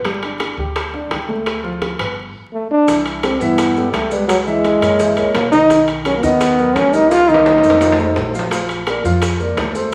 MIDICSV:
0, 0, Header, 1, 5, 480
1, 0, Start_track
1, 0, Tempo, 352734
1, 72, Time_signature, 4, 2, 24, 8
1, 13529, End_track
2, 0, Start_track
2, 0, Title_t, "Grand piano"
2, 0, Program_c, 0, 0
2, 74, Note_on_c, 0, 55, 70
2, 80, Note_on_c, 0, 67, 69
2, 270, Note_off_c, 0, 55, 0
2, 274, Note_off_c, 0, 67, 0
2, 322, Note_on_c, 0, 62, 68
2, 324, Note_on_c, 0, 74, 67
2, 713, Note_off_c, 0, 62, 0
2, 714, Note_off_c, 0, 74, 0
2, 800, Note_on_c, 0, 67, 76
2, 807, Note_on_c, 0, 79, 72
2, 1192, Note_off_c, 0, 67, 0
2, 1196, Note_off_c, 0, 79, 0
2, 1272, Note_on_c, 0, 62, 64
2, 1274, Note_on_c, 0, 74, 68
2, 1470, Note_off_c, 0, 62, 0
2, 1471, Note_off_c, 0, 74, 0
2, 1509, Note_on_c, 0, 67, 61
2, 1515, Note_on_c, 0, 79, 65
2, 1709, Note_off_c, 0, 67, 0
2, 1712, Note_off_c, 0, 79, 0
2, 1749, Note_on_c, 0, 57, 77
2, 1754, Note_on_c, 0, 69, 69
2, 2146, Note_off_c, 0, 57, 0
2, 2149, Note_off_c, 0, 69, 0
2, 2223, Note_on_c, 0, 53, 81
2, 2228, Note_on_c, 0, 65, 86
2, 2623, Note_off_c, 0, 53, 0
2, 2626, Note_off_c, 0, 65, 0
2, 2716, Note_on_c, 0, 59, 72
2, 2723, Note_on_c, 0, 71, 78
2, 2913, Note_off_c, 0, 59, 0
2, 2918, Note_off_c, 0, 71, 0
2, 3920, Note_on_c, 0, 52, 78
2, 3924, Note_on_c, 0, 64, 85
2, 3929, Note_on_c, 0, 76, 73
2, 4313, Note_off_c, 0, 52, 0
2, 4316, Note_off_c, 0, 64, 0
2, 4318, Note_off_c, 0, 76, 0
2, 4396, Note_on_c, 0, 55, 70
2, 4397, Note_on_c, 0, 67, 72
2, 4399, Note_on_c, 0, 69, 64
2, 4594, Note_off_c, 0, 55, 0
2, 4595, Note_off_c, 0, 67, 0
2, 4596, Note_off_c, 0, 69, 0
2, 4643, Note_on_c, 0, 52, 88
2, 4646, Note_on_c, 0, 64, 89
2, 4650, Note_on_c, 0, 76, 97
2, 5035, Note_off_c, 0, 52, 0
2, 5037, Note_off_c, 0, 64, 0
2, 5039, Note_off_c, 0, 76, 0
2, 5114, Note_on_c, 0, 55, 71
2, 5123, Note_on_c, 0, 67, 72
2, 5128, Note_on_c, 0, 69, 75
2, 5510, Note_off_c, 0, 55, 0
2, 5515, Note_off_c, 0, 67, 0
2, 5518, Note_off_c, 0, 69, 0
2, 5598, Note_on_c, 0, 56, 77
2, 5598, Note_on_c, 0, 68, 75
2, 5607, Note_on_c, 0, 71, 69
2, 5992, Note_off_c, 0, 56, 0
2, 5992, Note_off_c, 0, 68, 0
2, 5997, Note_off_c, 0, 71, 0
2, 6075, Note_on_c, 0, 52, 85
2, 6085, Note_on_c, 0, 64, 79
2, 6085, Note_on_c, 0, 76, 85
2, 6470, Note_off_c, 0, 52, 0
2, 6476, Note_off_c, 0, 64, 0
2, 6476, Note_off_c, 0, 76, 0
2, 6559, Note_on_c, 0, 58, 72
2, 6563, Note_on_c, 0, 70, 83
2, 6566, Note_on_c, 0, 73, 78
2, 6756, Note_off_c, 0, 58, 0
2, 6759, Note_off_c, 0, 70, 0
2, 6760, Note_off_c, 0, 73, 0
2, 6796, Note_on_c, 0, 52, 74
2, 6801, Note_on_c, 0, 64, 80
2, 6804, Note_on_c, 0, 76, 71
2, 6994, Note_off_c, 0, 52, 0
2, 6997, Note_off_c, 0, 64, 0
2, 6999, Note_off_c, 0, 76, 0
2, 7030, Note_on_c, 0, 58, 71
2, 7035, Note_on_c, 0, 70, 77
2, 7038, Note_on_c, 0, 73, 73
2, 7427, Note_off_c, 0, 58, 0
2, 7430, Note_off_c, 0, 70, 0
2, 7432, Note_off_c, 0, 73, 0
2, 7520, Note_on_c, 0, 51, 85
2, 7528, Note_on_c, 0, 63, 89
2, 7529, Note_on_c, 0, 75, 85
2, 7716, Note_off_c, 0, 51, 0
2, 7721, Note_off_c, 0, 63, 0
2, 7721, Note_off_c, 0, 75, 0
2, 7756, Note_on_c, 0, 51, 80
2, 7762, Note_on_c, 0, 63, 81
2, 7768, Note_on_c, 0, 75, 78
2, 8151, Note_off_c, 0, 51, 0
2, 8154, Note_off_c, 0, 63, 0
2, 8157, Note_off_c, 0, 75, 0
2, 8234, Note_on_c, 0, 54, 62
2, 8238, Note_on_c, 0, 66, 62
2, 8247, Note_on_c, 0, 70, 70
2, 8432, Note_off_c, 0, 54, 0
2, 8435, Note_off_c, 0, 66, 0
2, 8440, Note_off_c, 0, 70, 0
2, 8478, Note_on_c, 0, 51, 92
2, 8481, Note_on_c, 0, 63, 101
2, 8487, Note_on_c, 0, 75, 99
2, 8872, Note_off_c, 0, 51, 0
2, 8873, Note_off_c, 0, 63, 0
2, 8877, Note_off_c, 0, 75, 0
2, 8959, Note_on_c, 0, 54, 67
2, 8967, Note_on_c, 0, 66, 67
2, 8968, Note_on_c, 0, 70, 79
2, 9352, Note_off_c, 0, 54, 0
2, 9357, Note_off_c, 0, 66, 0
2, 9357, Note_off_c, 0, 70, 0
2, 9439, Note_on_c, 0, 55, 75
2, 9443, Note_on_c, 0, 67, 76
2, 9447, Note_on_c, 0, 70, 83
2, 9832, Note_off_c, 0, 55, 0
2, 9834, Note_off_c, 0, 67, 0
2, 9836, Note_off_c, 0, 70, 0
2, 9917, Note_on_c, 0, 51, 87
2, 9918, Note_on_c, 0, 63, 85
2, 9922, Note_on_c, 0, 75, 89
2, 10310, Note_off_c, 0, 51, 0
2, 10311, Note_off_c, 0, 63, 0
2, 10313, Note_off_c, 0, 75, 0
2, 10398, Note_on_c, 0, 57, 75
2, 10404, Note_on_c, 0, 69, 75
2, 10406, Note_on_c, 0, 72, 84
2, 10594, Note_off_c, 0, 57, 0
2, 10597, Note_off_c, 0, 69, 0
2, 10598, Note_off_c, 0, 72, 0
2, 10632, Note_on_c, 0, 53, 73
2, 10635, Note_on_c, 0, 65, 80
2, 10636, Note_on_c, 0, 77, 79
2, 10830, Note_off_c, 0, 53, 0
2, 10832, Note_off_c, 0, 65, 0
2, 10832, Note_off_c, 0, 77, 0
2, 10873, Note_on_c, 0, 57, 63
2, 10875, Note_on_c, 0, 69, 71
2, 10879, Note_on_c, 0, 72, 72
2, 11267, Note_off_c, 0, 57, 0
2, 11268, Note_off_c, 0, 69, 0
2, 11271, Note_off_c, 0, 72, 0
2, 11360, Note_on_c, 0, 53, 80
2, 11364, Note_on_c, 0, 77, 80
2, 11365, Note_on_c, 0, 65, 79
2, 11554, Note_off_c, 0, 53, 0
2, 11557, Note_off_c, 0, 65, 0
2, 11557, Note_off_c, 0, 77, 0
2, 11589, Note_on_c, 0, 53, 73
2, 11595, Note_on_c, 0, 65, 80
2, 11601, Note_on_c, 0, 77, 81
2, 11984, Note_off_c, 0, 53, 0
2, 11988, Note_off_c, 0, 65, 0
2, 11991, Note_off_c, 0, 77, 0
2, 12072, Note_on_c, 0, 58, 65
2, 12076, Note_on_c, 0, 70, 71
2, 12081, Note_on_c, 0, 74, 71
2, 12269, Note_off_c, 0, 58, 0
2, 12271, Note_off_c, 0, 70, 0
2, 12275, Note_off_c, 0, 74, 0
2, 12315, Note_on_c, 0, 53, 87
2, 12318, Note_on_c, 0, 65, 93
2, 12320, Note_on_c, 0, 77, 82
2, 12708, Note_off_c, 0, 53, 0
2, 12709, Note_off_c, 0, 65, 0
2, 12710, Note_off_c, 0, 77, 0
2, 12797, Note_on_c, 0, 58, 72
2, 12797, Note_on_c, 0, 70, 70
2, 12805, Note_on_c, 0, 74, 73
2, 13188, Note_off_c, 0, 58, 0
2, 13188, Note_off_c, 0, 70, 0
2, 13193, Note_off_c, 0, 74, 0
2, 13270, Note_on_c, 0, 57, 70
2, 13275, Note_on_c, 0, 69, 74
2, 13278, Note_on_c, 0, 72, 75
2, 13529, Note_off_c, 0, 57, 0
2, 13529, Note_off_c, 0, 69, 0
2, 13529, Note_off_c, 0, 72, 0
2, 13529, End_track
3, 0, Start_track
3, 0, Title_t, "Trombone"
3, 0, Program_c, 1, 57
3, 3443, Note_on_c, 1, 57, 74
3, 3664, Note_off_c, 1, 57, 0
3, 3684, Note_on_c, 1, 62, 92
3, 4128, Note_off_c, 1, 62, 0
3, 4398, Note_on_c, 1, 60, 78
3, 4633, Note_on_c, 1, 59, 88
3, 4653, Note_off_c, 1, 60, 0
3, 5291, Note_off_c, 1, 59, 0
3, 5299, Note_on_c, 1, 55, 59
3, 5338, Note_on_c, 1, 57, 83
3, 5358, Note_off_c, 1, 55, 0
3, 5578, Note_on_c, 1, 55, 83
3, 5599, Note_off_c, 1, 57, 0
3, 5816, Note_off_c, 1, 55, 0
3, 5824, Note_on_c, 1, 54, 95
3, 5936, Note_off_c, 1, 54, 0
3, 6054, Note_on_c, 1, 56, 92
3, 7212, Note_off_c, 1, 56, 0
3, 7263, Note_on_c, 1, 58, 84
3, 7494, Note_off_c, 1, 58, 0
3, 7505, Note_on_c, 1, 63, 105
3, 7958, Note_off_c, 1, 63, 0
3, 8235, Note_on_c, 1, 61, 85
3, 8371, Note_off_c, 1, 61, 0
3, 8400, Note_on_c, 1, 58, 77
3, 8473, Note_on_c, 1, 59, 109
3, 8493, Note_off_c, 1, 58, 0
3, 9193, Note_on_c, 1, 61, 95
3, 9214, Note_off_c, 1, 59, 0
3, 9434, Note_on_c, 1, 63, 105
3, 9454, Note_off_c, 1, 61, 0
3, 9673, Note_on_c, 1, 65, 122
3, 9694, Note_off_c, 1, 63, 0
3, 9911, Note_on_c, 1, 63, 107
3, 9931, Note_off_c, 1, 65, 0
3, 11352, Note_off_c, 1, 63, 0
3, 13529, End_track
4, 0, Start_track
4, 0, Title_t, "Upright bass"
4, 0, Program_c, 2, 32
4, 0, Note_on_c, 2, 31, 78
4, 714, Note_off_c, 2, 31, 0
4, 779, Note_on_c, 2, 38, 82
4, 1457, Note_off_c, 2, 38, 0
4, 1504, Note_on_c, 2, 38, 75
4, 2633, Note_off_c, 2, 38, 0
4, 2711, Note_on_c, 2, 31, 76
4, 3161, Note_off_c, 2, 31, 0
4, 3917, Note_on_c, 2, 36, 80
4, 4588, Note_off_c, 2, 36, 0
4, 4627, Note_on_c, 2, 43, 90
4, 5302, Note_off_c, 2, 43, 0
4, 5346, Note_on_c, 2, 37, 82
4, 6474, Note_off_c, 2, 37, 0
4, 6544, Note_on_c, 2, 42, 82
4, 6997, Note_off_c, 2, 42, 0
4, 7030, Note_on_c, 2, 37, 71
4, 7257, Note_off_c, 2, 37, 0
4, 7272, Note_on_c, 2, 35, 73
4, 8396, Note_off_c, 2, 35, 0
4, 8473, Note_on_c, 2, 39, 96
4, 9145, Note_off_c, 2, 39, 0
4, 9187, Note_on_c, 2, 36, 80
4, 10313, Note_off_c, 2, 36, 0
4, 10386, Note_on_c, 2, 41, 85
4, 11060, Note_off_c, 2, 41, 0
4, 11099, Note_on_c, 2, 34, 82
4, 12227, Note_off_c, 2, 34, 0
4, 12301, Note_on_c, 2, 41, 89
4, 12975, Note_off_c, 2, 41, 0
4, 13018, Note_on_c, 2, 38, 84
4, 13529, Note_off_c, 2, 38, 0
4, 13529, End_track
5, 0, Start_track
5, 0, Title_t, "Drums"
5, 63, Note_on_c, 9, 65, 61
5, 70, Note_on_c, 9, 60, 64
5, 199, Note_off_c, 9, 65, 0
5, 206, Note_off_c, 9, 60, 0
5, 309, Note_on_c, 9, 65, 66
5, 314, Note_on_c, 9, 60, 35
5, 445, Note_off_c, 9, 65, 0
5, 450, Note_off_c, 9, 60, 0
5, 544, Note_on_c, 9, 65, 83
5, 547, Note_on_c, 9, 60, 54
5, 680, Note_off_c, 9, 65, 0
5, 683, Note_off_c, 9, 60, 0
5, 1031, Note_on_c, 9, 65, 73
5, 1035, Note_on_c, 9, 60, 68
5, 1167, Note_off_c, 9, 65, 0
5, 1171, Note_off_c, 9, 60, 0
5, 1277, Note_on_c, 9, 60, 31
5, 1413, Note_off_c, 9, 60, 0
5, 1511, Note_on_c, 9, 65, 65
5, 1512, Note_on_c, 9, 60, 60
5, 1512, Note_on_c, 9, 61, 69
5, 1647, Note_off_c, 9, 65, 0
5, 1648, Note_off_c, 9, 60, 0
5, 1648, Note_off_c, 9, 61, 0
5, 1759, Note_on_c, 9, 60, 36
5, 1895, Note_off_c, 9, 60, 0
5, 1990, Note_on_c, 9, 65, 76
5, 2000, Note_on_c, 9, 60, 59
5, 2127, Note_off_c, 9, 65, 0
5, 2136, Note_off_c, 9, 60, 0
5, 2240, Note_on_c, 9, 60, 37
5, 2376, Note_off_c, 9, 60, 0
5, 2473, Note_on_c, 9, 65, 60
5, 2474, Note_on_c, 9, 60, 52
5, 2609, Note_off_c, 9, 65, 0
5, 2611, Note_off_c, 9, 60, 0
5, 2713, Note_on_c, 9, 65, 94
5, 2850, Note_off_c, 9, 65, 0
5, 3918, Note_on_c, 9, 70, 94
5, 3920, Note_on_c, 9, 65, 59
5, 3923, Note_on_c, 9, 60, 61
5, 4054, Note_off_c, 9, 70, 0
5, 4056, Note_off_c, 9, 65, 0
5, 4059, Note_off_c, 9, 60, 0
5, 4158, Note_on_c, 9, 65, 73
5, 4160, Note_on_c, 9, 60, 38
5, 4170, Note_on_c, 9, 70, 28
5, 4294, Note_off_c, 9, 65, 0
5, 4296, Note_off_c, 9, 60, 0
5, 4306, Note_off_c, 9, 70, 0
5, 4399, Note_on_c, 9, 65, 93
5, 4401, Note_on_c, 9, 70, 33
5, 4404, Note_on_c, 9, 60, 56
5, 4535, Note_off_c, 9, 65, 0
5, 4537, Note_off_c, 9, 70, 0
5, 4540, Note_off_c, 9, 60, 0
5, 4640, Note_on_c, 9, 70, 64
5, 4776, Note_off_c, 9, 70, 0
5, 4873, Note_on_c, 9, 65, 89
5, 4874, Note_on_c, 9, 70, 90
5, 4879, Note_on_c, 9, 60, 61
5, 5009, Note_off_c, 9, 65, 0
5, 5010, Note_off_c, 9, 70, 0
5, 5015, Note_off_c, 9, 60, 0
5, 5123, Note_on_c, 9, 70, 25
5, 5124, Note_on_c, 9, 60, 33
5, 5259, Note_off_c, 9, 70, 0
5, 5260, Note_off_c, 9, 60, 0
5, 5357, Note_on_c, 9, 70, 30
5, 5358, Note_on_c, 9, 60, 64
5, 5358, Note_on_c, 9, 61, 75
5, 5364, Note_on_c, 9, 65, 70
5, 5493, Note_off_c, 9, 70, 0
5, 5494, Note_off_c, 9, 60, 0
5, 5494, Note_off_c, 9, 61, 0
5, 5500, Note_off_c, 9, 65, 0
5, 5594, Note_on_c, 9, 70, 78
5, 5599, Note_on_c, 9, 60, 37
5, 5730, Note_off_c, 9, 70, 0
5, 5735, Note_off_c, 9, 60, 0
5, 5839, Note_on_c, 9, 65, 76
5, 5841, Note_on_c, 9, 70, 89
5, 5843, Note_on_c, 9, 60, 63
5, 5975, Note_off_c, 9, 65, 0
5, 5977, Note_off_c, 9, 70, 0
5, 5979, Note_off_c, 9, 60, 0
5, 6085, Note_on_c, 9, 70, 30
5, 6086, Note_on_c, 9, 60, 35
5, 6221, Note_off_c, 9, 70, 0
5, 6222, Note_off_c, 9, 60, 0
5, 6319, Note_on_c, 9, 65, 69
5, 6321, Note_on_c, 9, 60, 54
5, 6323, Note_on_c, 9, 70, 30
5, 6455, Note_off_c, 9, 65, 0
5, 6457, Note_off_c, 9, 60, 0
5, 6459, Note_off_c, 9, 70, 0
5, 6562, Note_on_c, 9, 65, 92
5, 6566, Note_on_c, 9, 70, 74
5, 6698, Note_off_c, 9, 65, 0
5, 6702, Note_off_c, 9, 70, 0
5, 6796, Note_on_c, 9, 70, 91
5, 6800, Note_on_c, 9, 60, 63
5, 6932, Note_off_c, 9, 70, 0
5, 6936, Note_off_c, 9, 60, 0
5, 7033, Note_on_c, 9, 65, 66
5, 7039, Note_on_c, 9, 70, 26
5, 7042, Note_on_c, 9, 60, 33
5, 7169, Note_off_c, 9, 65, 0
5, 7175, Note_off_c, 9, 70, 0
5, 7178, Note_off_c, 9, 60, 0
5, 7274, Note_on_c, 9, 65, 90
5, 7274, Note_on_c, 9, 66, 68
5, 7276, Note_on_c, 9, 70, 29
5, 7282, Note_on_c, 9, 60, 63
5, 7282, Note_on_c, 9, 61, 77
5, 7411, Note_off_c, 9, 65, 0
5, 7411, Note_off_c, 9, 66, 0
5, 7412, Note_off_c, 9, 70, 0
5, 7418, Note_off_c, 9, 60, 0
5, 7418, Note_off_c, 9, 61, 0
5, 7519, Note_on_c, 9, 70, 75
5, 7524, Note_on_c, 9, 60, 37
5, 7655, Note_off_c, 9, 70, 0
5, 7660, Note_off_c, 9, 60, 0
5, 7757, Note_on_c, 9, 65, 62
5, 7762, Note_on_c, 9, 70, 86
5, 7764, Note_on_c, 9, 60, 65
5, 7893, Note_off_c, 9, 65, 0
5, 7898, Note_off_c, 9, 70, 0
5, 7901, Note_off_c, 9, 60, 0
5, 7998, Note_on_c, 9, 65, 69
5, 8003, Note_on_c, 9, 70, 26
5, 8007, Note_on_c, 9, 60, 39
5, 8134, Note_off_c, 9, 65, 0
5, 8139, Note_off_c, 9, 70, 0
5, 8143, Note_off_c, 9, 60, 0
5, 8235, Note_on_c, 9, 65, 83
5, 8243, Note_on_c, 9, 70, 29
5, 8246, Note_on_c, 9, 60, 51
5, 8371, Note_off_c, 9, 65, 0
5, 8379, Note_off_c, 9, 70, 0
5, 8382, Note_off_c, 9, 60, 0
5, 8480, Note_on_c, 9, 70, 73
5, 8617, Note_off_c, 9, 70, 0
5, 8720, Note_on_c, 9, 60, 75
5, 8720, Note_on_c, 9, 70, 86
5, 8722, Note_on_c, 9, 65, 79
5, 8856, Note_off_c, 9, 60, 0
5, 8856, Note_off_c, 9, 70, 0
5, 8858, Note_off_c, 9, 65, 0
5, 8960, Note_on_c, 9, 70, 23
5, 8962, Note_on_c, 9, 60, 34
5, 9096, Note_off_c, 9, 70, 0
5, 9098, Note_off_c, 9, 60, 0
5, 9198, Note_on_c, 9, 65, 73
5, 9198, Note_on_c, 9, 66, 74
5, 9201, Note_on_c, 9, 60, 61
5, 9201, Note_on_c, 9, 61, 69
5, 9202, Note_on_c, 9, 70, 31
5, 9334, Note_off_c, 9, 65, 0
5, 9334, Note_off_c, 9, 66, 0
5, 9337, Note_off_c, 9, 60, 0
5, 9337, Note_off_c, 9, 61, 0
5, 9338, Note_off_c, 9, 70, 0
5, 9437, Note_on_c, 9, 70, 67
5, 9446, Note_on_c, 9, 60, 34
5, 9573, Note_off_c, 9, 70, 0
5, 9582, Note_off_c, 9, 60, 0
5, 9681, Note_on_c, 9, 65, 62
5, 9681, Note_on_c, 9, 70, 87
5, 9685, Note_on_c, 9, 60, 62
5, 9817, Note_off_c, 9, 65, 0
5, 9817, Note_off_c, 9, 70, 0
5, 9821, Note_off_c, 9, 60, 0
5, 9919, Note_on_c, 9, 60, 35
5, 9921, Note_on_c, 9, 70, 29
5, 9993, Note_on_c, 9, 65, 91
5, 10055, Note_off_c, 9, 60, 0
5, 10057, Note_off_c, 9, 70, 0
5, 10129, Note_off_c, 9, 65, 0
5, 10153, Note_on_c, 9, 60, 56
5, 10154, Note_on_c, 9, 66, 96
5, 10157, Note_on_c, 9, 70, 30
5, 10289, Note_off_c, 9, 60, 0
5, 10290, Note_off_c, 9, 66, 0
5, 10293, Note_off_c, 9, 70, 0
5, 10317, Note_on_c, 9, 65, 71
5, 10391, Note_on_c, 9, 70, 73
5, 10453, Note_off_c, 9, 65, 0
5, 10478, Note_on_c, 9, 65, 73
5, 10527, Note_off_c, 9, 70, 0
5, 10614, Note_off_c, 9, 65, 0
5, 10627, Note_on_c, 9, 60, 65
5, 10627, Note_on_c, 9, 66, 81
5, 10632, Note_on_c, 9, 70, 87
5, 10763, Note_off_c, 9, 60, 0
5, 10764, Note_off_c, 9, 66, 0
5, 10769, Note_off_c, 9, 70, 0
5, 10783, Note_on_c, 9, 66, 101
5, 10870, Note_on_c, 9, 60, 34
5, 10871, Note_on_c, 9, 70, 25
5, 10919, Note_off_c, 9, 66, 0
5, 11006, Note_off_c, 9, 60, 0
5, 11008, Note_off_c, 9, 70, 0
5, 11106, Note_on_c, 9, 60, 63
5, 11106, Note_on_c, 9, 61, 77
5, 11107, Note_on_c, 9, 66, 68
5, 11118, Note_on_c, 9, 70, 30
5, 11242, Note_off_c, 9, 60, 0
5, 11242, Note_off_c, 9, 61, 0
5, 11243, Note_off_c, 9, 66, 0
5, 11254, Note_off_c, 9, 70, 0
5, 11344, Note_on_c, 9, 60, 37
5, 11358, Note_on_c, 9, 70, 69
5, 11420, Note_on_c, 9, 66, 73
5, 11480, Note_off_c, 9, 60, 0
5, 11495, Note_off_c, 9, 70, 0
5, 11556, Note_off_c, 9, 66, 0
5, 11581, Note_on_c, 9, 65, 57
5, 11587, Note_on_c, 9, 60, 63
5, 11598, Note_on_c, 9, 70, 89
5, 11718, Note_off_c, 9, 65, 0
5, 11723, Note_off_c, 9, 60, 0
5, 11734, Note_off_c, 9, 70, 0
5, 11827, Note_on_c, 9, 65, 69
5, 11831, Note_on_c, 9, 60, 36
5, 11845, Note_on_c, 9, 70, 28
5, 11963, Note_off_c, 9, 65, 0
5, 11967, Note_off_c, 9, 60, 0
5, 11981, Note_off_c, 9, 70, 0
5, 12068, Note_on_c, 9, 65, 96
5, 12076, Note_on_c, 9, 60, 58
5, 12078, Note_on_c, 9, 70, 30
5, 12204, Note_off_c, 9, 65, 0
5, 12212, Note_off_c, 9, 60, 0
5, 12214, Note_off_c, 9, 70, 0
5, 12318, Note_on_c, 9, 70, 72
5, 12454, Note_off_c, 9, 70, 0
5, 12543, Note_on_c, 9, 65, 82
5, 12552, Note_on_c, 9, 70, 91
5, 12553, Note_on_c, 9, 60, 71
5, 12679, Note_off_c, 9, 65, 0
5, 12688, Note_off_c, 9, 70, 0
5, 12689, Note_off_c, 9, 60, 0
5, 12794, Note_on_c, 9, 60, 34
5, 12796, Note_on_c, 9, 70, 27
5, 12930, Note_off_c, 9, 60, 0
5, 12932, Note_off_c, 9, 70, 0
5, 13027, Note_on_c, 9, 65, 65
5, 13027, Note_on_c, 9, 66, 70
5, 13029, Note_on_c, 9, 70, 32
5, 13033, Note_on_c, 9, 60, 64
5, 13033, Note_on_c, 9, 61, 80
5, 13163, Note_off_c, 9, 65, 0
5, 13163, Note_off_c, 9, 66, 0
5, 13165, Note_off_c, 9, 70, 0
5, 13169, Note_off_c, 9, 60, 0
5, 13169, Note_off_c, 9, 61, 0
5, 13267, Note_on_c, 9, 70, 68
5, 13274, Note_on_c, 9, 60, 37
5, 13403, Note_off_c, 9, 70, 0
5, 13410, Note_off_c, 9, 60, 0
5, 13529, End_track
0, 0, End_of_file